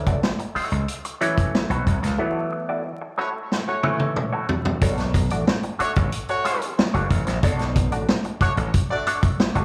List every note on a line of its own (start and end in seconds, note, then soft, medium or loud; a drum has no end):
0.00 0.29 E3 medium
0.00 0.29 F#3 medium
0.00 0.29 A3 medium
0.00 0.29 C#4 medium
0.06 0.20 C#2 medium
0.06 0.22 A3 medium
0.06 0.22 E4 soft
0.06 0.22 F#4 medium
0.06 0.23 D5 medium
0.06 kick medium
0.06 closed hi-hat soft
0.23 muted clean electric guitar stroke soft
0.23 snare loud
0.39 muted clean electric guitar stroke medium
0.39 closed hi-hat soft
0.55 0.76 A3 medium
0.55 0.71 E4 medium
0.55 0.71 F#4 medium
0.55 0.70 C#5 medium
0.55 muted slap bass stroke soft
0.55 open hi-hat medium
0.71 0.85 C#2 medium
0.71 muted clean electric guitar stroke soft
0.71 closed hi-hat soft
0.88 closed hi-hat loud
1.05 muted clean electric guitar stroke medium
1.05 closed hi-hat medium
1.21 1.75 E3 medium
1.21 1.75 F#3 medium
1.21 1.41 A3 medium
1.21 1.75 A3 medium
1.21 1.75 C#4 loud
1.21 1.38 E4 medium
1.21 1.37 F#4 medium
1.21 1.37 C#5 loud
1.21 closed hi-hat medium
1.38 muted clean electric guitar stroke soft
1.38 kick medium
1.38 closed hi-hat medium
1.54 muted clean electric guitar stroke soft
1.54 snare loud
1.70 1.83 B1 medium
1.70 1.85 A3 medium
1.70 1.86 E4 medium
1.70 1.86 F#4 medium
1.70 1.87 C#5 medium
1.70 closed hi-hat medium
1.87 2.00 C2 medium
1.87 muted clean electric guitar stroke soft
1.87 kick medium
1.87 closed hi-hat medium
2.03 2.16 C#2 loud
2.03 muted clean electric guitar stroke soft
2.03 snare soft
2.03 closed hi-hat medium
2.18 2.92 E3 medium
2.18 2.92 F#3 medium
2.18 2.39 A3 medium
2.18 2.92 A3 medium
2.18 2.92 B3 medium
2.18 2.40 E4 medium
2.18 2.40 F#4 medium
2.18 2.40 C#5 medium
2.52 muted clean electric guitar stroke soft
2.69 2.84 A3 soft
2.69 2.85 E4 medium
2.69 2.85 F#4 medium
2.69 2.85 D5 medium
2.85 muted clean electric guitar stroke medium
3.01 muted clean electric guitar stroke medium
3.17 3.28 A3 medium
3.17 3.38 A3 medium
3.17 3.35 E4 medium
3.17 3.28 F#4 medium
3.17 3.34 F#4 medium
3.17 3.28 C#5 loud
3.17 3.34 C#5 medium
3.35 muted clean electric guitar stroke soft
3.52 snare medium
3.67 3.88 A3 medium
3.67 3.88 F#4 medium
3.67 3.88 C#5 medium
3.67 muted clean electric guitar stroke soft
3.83 4.37 E3 medium
3.83 4.37 F#3 medium
3.83 4.04 A3 medium
3.83 4.38 A3 medium
3.83 4.38 C#4 medium
3.83 4.00 E4 medium
3.83 4.00 F#4 medium
3.83 3.99 C#5 medium
3.83 high tom medium
4.00 muted clean electric guitar stroke soft
4.00 high tom medium
4.16 muted clean electric guitar stroke soft
4.16 mid tom medium
4.33 4.48 A3 medium
4.33 4.48 E4 medium
4.33 4.49 F#4 medium
4.33 4.49 C#5 medium
4.49 muted clean electric guitar stroke soft
4.49 floor tom loud
4.65 muted clean electric guitar stroke medium
4.65 floor tom loud
4.82 5.31 B1 loud
4.82 5.02 A3 medium
4.82 5.03 D4 medium
4.82 5.03 F#4 medium
4.82 5.03 C#5 loud
4.82 kick loud
4.82 closed hi-hat loud
4.98 snare soft
4.98 closed hi-hat soft
5.14 muted clean electric guitar stroke soft
5.14 kick medium
5.14 closed hi-hat medium
5.30 5.44 A1 medium
5.30 5.46 A3 soft
5.30 5.47 D4 soft
5.30 5.47 F#4 medium
5.30 5.47 D5 medium
5.30 closed hi-hat medium
5.47 muted clean electric guitar stroke medium
5.47 snare loud
5.63 muted clean electric guitar stroke medium
5.63 closed hi-hat soft
5.79 6.00 A3 medium
5.79 5.90 A3 medium
5.79 5.96 D4 loud
5.79 5.90 F#4 medium
5.79 5.96 F#4 medium
5.79 5.91 C#5 loud
5.79 5.95 C#5 medium
5.79 muted slap bass stroke medium
5.79 closed hi-hat medium
5.96 6.09 A1 medium
5.96 muted clean electric guitar stroke soft
5.96 kick loud
5.96 closed hi-hat soft
6.12 closed hi-hat loud
6.28 6.70 A3 loud
6.28 6.71 F#4 loud
6.28 6.70 C#5 loud
6.28 muted clean electric guitar stroke medium
6.28 closed hi-hat soft
6.45 6.65 A3 medium
6.45 6.61 D4 medium
6.45 6.61 F#4 medium
6.45 6.60 C#5 medium
6.45 closed hi-hat medium
6.62 muted clean electric guitar stroke soft
6.62 closed hi-hat medium
6.78 muted clean electric guitar stroke soft
6.78 snare loud
6.94 7.07 F#1 medium
6.94 7.09 A3 medium
6.94 7.09 D4 medium
6.94 7.10 F#4 medium
6.94 7.10 C#5 medium
6.94 closed hi-hat soft
7.10 7.24 A1 medium
7.10 muted clean electric guitar stroke soft
7.10 kick medium
7.10 closed hi-hat medium
7.27 7.40 A#1 medium
7.27 muted clean electric guitar stroke medium
7.27 snare soft
7.27 closed hi-hat medium
7.43 7.92 B1 loud
7.43 7.64 A3 medium
7.43 7.64 D4 loud
7.43 7.64 F#4 loud
7.43 7.64 C#5 loud
7.43 kick loud
7.43 closed hi-hat loud
7.59 snare soft
7.59 closed hi-hat soft
7.76 muted clean electric guitar stroke soft
7.76 kick loud
7.76 closed hi-hat medium
7.92 8.05 A1 medium
7.92 8.08 A3 medium
7.92 8.08 D4 medium
7.92 8.08 F#4 medium
7.92 8.08 D5 medium
7.92 closed hi-hat medium
8.09 muted clean electric guitar stroke medium
8.09 snare loud
8.24 muted clean electric guitar stroke medium
8.24 closed hi-hat soft
8.41 8.52 A3 loud
8.41 8.62 A3 loud
8.41 8.58 D4 loud
8.41 8.52 F#4 medium
8.41 8.57 F#4 loud
8.41 8.51 C#5 loud
8.41 8.56 C#5 loud
8.41 muted slap bass stroke soft
8.41 kick medium
8.41 closed hi-hat medium
8.57 8.70 A1 medium
8.57 muted clean electric guitar stroke soft
8.57 closed hi-hat soft
8.74 kick loud
8.74 closed hi-hat loud
8.90 9.11 A3 loud
8.90 9.11 F#4 medium
8.90 9.11 D5 loud
8.90 muted clean electric guitar stroke medium
9.07 9.27 A3 medium
9.07 9.23 D4 medium
9.07 9.23 F#4 medium
9.07 9.22 C#5 medium
9.07 closed hi-hat medium
9.23 muted clean electric guitar stroke medium
9.23 kick loud
9.23 closed hi-hat medium
9.40 muted clean electric guitar stroke soft
9.40 snare loud
9.55 9.65 F#1 loud
9.55 9.65 A3 medium
9.55 9.65 D4 medium
9.55 9.65 F#4 medium
9.55 9.65 C#5 medium
9.55 closed hi-hat soft